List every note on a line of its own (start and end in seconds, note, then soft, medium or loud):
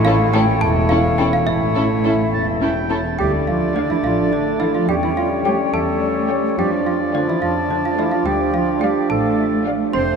0.00 0.49 A1 medium
0.00 0.48 A2 medium
0.00 0.58 A3 medium
0.00 0.60 E4 medium
0.00 0.59 C#5 medium
0.05 0.14 C#4 medium
0.05 0.17 C#4 medium
0.05 0.13 E4 medium
0.05 0.16 E4 medium
0.05 0.14 A4 medium
0.05 0.32 F5 medium
0.05 0.35 F5 medium
0.33 0.44 C#4 medium
0.33 0.42 C#4 medium
0.33 0.42 E4 medium
0.33 0.44 E4 medium
0.33 0.41 A4 medium
0.33 0.62 G5 medium
0.33 0.60 G5 medium
0.61 1.34 E1 medium
0.61 1.34 E2 medium
0.61 1.47 A3 medium
0.61 1.47 E4 medium
0.61 1.46 C#5 medium
0.61 0.88 A5 medium
0.61 0.69 A5 medium
0.89 1.01 C#4 medium
0.89 0.99 C#4 medium
0.89 1.01 E4 medium
0.89 0.98 E4 medium
0.89 0.98 A4 medium
0.89 1.17 F5 medium
0.89 1.19 F5 medium
1.18 1.27 C#4 medium
1.18 1.30 C#4 medium
1.18 1.27 E4 medium
1.18 1.30 E4 medium
1.18 1.26 A4 medium
1.18 1.32 G5 medium
1.18 1.26 G5 medium
1.33 1.39 F5 medium
1.33 1.47 F5 medium
1.46 2.20 A1 medium
1.46 2.20 A2 medium
1.46 2.88 A3 medium
1.46 2.89 E4 medium
1.46 2.26 C#5 medium
1.46 2.87 E5 medium
1.46 2.86 E5 medium
1.75 1.84 C#4 medium
1.75 1.87 C#4 medium
1.75 1.84 E4 medium
1.75 1.87 E4 medium
1.75 1.83 A4 medium
2.04 2.13 C#4 medium
2.04 2.15 C#4 medium
2.04 2.13 E4 medium
2.04 2.15 E4 soft
2.04 2.12 A4 medium
2.33 3.05 E1 medium
2.33 3.05 E2 medium
2.33 2.46 A5 medium
2.61 2.72 C#4 medium
2.61 2.70 C#4 medium
2.61 2.70 E4 medium
2.61 2.72 E4 medium
2.61 2.70 A4 soft
2.61 2.93 G5 medium
2.89 2.98 C#4 soft
2.89 3.02 C#4 medium
2.89 2.99 E4 soft
2.89 3.02 E4 medium
2.89 2.97 A4 medium
2.89 3.19 A5 medium
3.19 3.88 D2 medium
3.19 3.46 G3 medium
3.19 4.85 A3 medium
3.19 4.85 D4 medium
3.19 3.32 G4 medium
3.19 4.85 D5 medium
3.19 3.45 G5 medium
3.47 3.76 F3 medium
3.47 3.75 F4 medium
3.47 3.74 F5 medium
3.76 3.82 D3 medium
3.76 3.97 A3 medium
3.76 3.90 D4 medium
3.76 3.89 D5 medium
3.76 3.98 D5 medium
3.76 3.97 F5 medium
3.90 3.96 E3 medium
3.90 3.97 E4 medium
3.90 4.03 E5 medium
4.04 4.72 A1 medium
4.04 4.33 F3 medium
4.04 4.34 F4 medium
4.04 4.30 F5 medium
4.32 4.41 D3 medium
4.32 4.61 D4 medium
4.32 4.59 D5 medium
4.59 4.67 E3 medium
4.59 4.82 A3 medium
4.59 4.74 E4 medium
4.59 4.81 D5 medium
4.59 4.74 E5 medium
4.59 4.82 F5 medium
4.75 4.89 F3 medium
4.75 4.89 F4 medium
4.75 4.88 F5 medium
4.89 5.57 E2 medium
4.89 6.54 G3 medium
4.89 6.59 G3 medium
4.89 5.03 G3 medium
4.89 6.58 C#4 medium
4.89 4.96 G4 medium
4.89 6.55 C#5 medium
4.89 5.02 G5 medium
4.89 5.72 G5 medium
5.03 5.17 E3 medium
5.03 5.10 E4 medium
5.03 5.16 E5 medium
5.17 5.25 F3 medium
5.17 5.30 F4 medium
5.17 5.43 F5 medium
5.45 5.53 G3 medium
5.45 5.66 A3 medium
5.45 5.58 G4 medium
5.45 5.66 C#5 medium
5.45 5.72 G5 medium
5.45 5.67 G5 medium
5.73 6.41 E2 medium
5.73 6.56 A3 medium
5.73 6.56 A4 medium
5.73 5.80 E5 medium
5.73 6.54 A5 medium
6.01 6.08 D5 medium
6.29 6.51 A3 medium
6.29 6.35 C#5 soft
6.29 6.51 C#5 medium
6.29 6.50 G5 medium
6.57 7.25 F2 medium
6.57 9.65 F3 medium
6.57 9.90 F3 medium
6.57 6.85 G3 medium
6.57 9.90 D4 medium
6.57 6.71 G4 medium
6.57 7.40 D5 medium
6.57 9.62 D5 medium
6.57 6.84 G5 medium
6.86 7.14 F3 medium
6.86 6.98 F4 medium
6.86 7.12 F5 soft
7.14 7.28 D3 medium
7.14 7.35 A3 medium
7.14 7.30 D4 medium
7.14 7.35 D5 medium
7.14 7.27 D5 medium
7.14 7.35 F5 medium
7.28 7.34 E3 medium
7.28 7.42 E4 medium
7.28 7.42 E5 medium
7.41 8.09 F2 medium
7.41 7.50 F3 medium
7.41 7.55 F4 medium
7.41 7.68 F5 medium
7.41 8.24 A5 medium
7.70 7.76 D3 medium
7.70 7.76 D4 medium
7.70 7.83 D5 medium
7.84 7.98 F3 medium
7.84 7.98 F4 medium
7.84 7.98 F5 medium
7.98 8.11 E3 medium
7.98 8.19 A3 medium
7.98 8.12 E4 medium
7.98 8.19 D5 medium
7.98 8.11 E5 medium
7.98 8.19 F5 medium
8.11 8.17 F3 medium
8.11 8.28 F4 medium
8.11 8.25 F5 soft
8.25 8.93 D2 medium
8.25 8.33 G3 medium
8.25 8.54 G4 medium
8.25 8.52 G5 medium
8.25 9.08 G5 medium
8.53 8.61 F3 medium
8.53 8.82 F4 medium
8.53 8.80 F5 medium
8.81 8.89 G3 medium
8.81 9.02 A3 medium
8.81 9.10 G4 medium
8.81 9.03 D5 medium
8.81 9.03 F5 medium
8.81 9.07 G5 medium
9.10 9.77 A1 medium
9.10 9.92 A3 medium
9.10 9.65 A4 medium
9.10 9.37 F5 medium
9.10 9.89 A5 medium
9.39 9.45 E5 medium
9.65 9.86 A3 medium
9.65 9.86 D5 medium
9.65 9.73 D5 medium
9.65 9.87 F5 medium
9.93 10.16 F1 medium
9.93 10.16 A3 medium
9.93 10.01 C4 medium
9.93 10.16 C4 medium
9.93 10.16 C5 medium
9.93 10.16 C6 medium